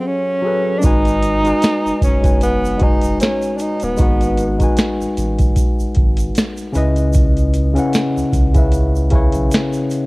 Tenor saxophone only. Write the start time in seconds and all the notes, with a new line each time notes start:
0.00 C4
0.07 C#4
0.79 D4
0.84 D#4
2.04 C#4
2.43 B3
2.83 D#4
3.21 C#4
3.57 D4
3.61 D#4
3.83 B3